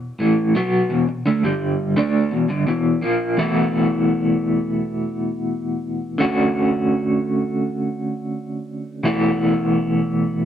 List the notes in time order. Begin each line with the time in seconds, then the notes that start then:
Already playing: E2 B2
0.19 A2 E3 A3
0.55 B2 F#3 B3
0.90 E2 B2
1.26 D3 A3
1.43 G2 D3 G3
1.97 D3 A3 D4
2.31 E2 B2
2.48 G2 D3
2.67 E2 B2 E3
3.01 A#2 F3 A#3
3.37 E2 B2 E3 A3 B3 E4
6.18 D3 A3 C#4 F#4
9.03 E2 B2 E3 A3 B3 E4